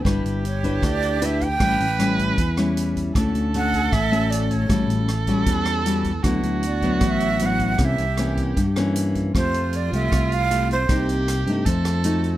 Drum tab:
HH |xxxxxxxx|xxxxxxxx|xxxxxxxx|xxxxxxxx|
SD |r---r---|r-r--r--|r---r---|r-r--r--|
BD |o--oo--o|o--oo--o|o--oo--o|o--oo--o|

HH |xxxxxxxx|xxxxxxxx|xxxxxxxx|xxxxxxxx|
SD |r---r---|r-r--r--|r---r---|r-r--r--|
BD |o--oo--o|o--oo--o|o---o---|o---o---|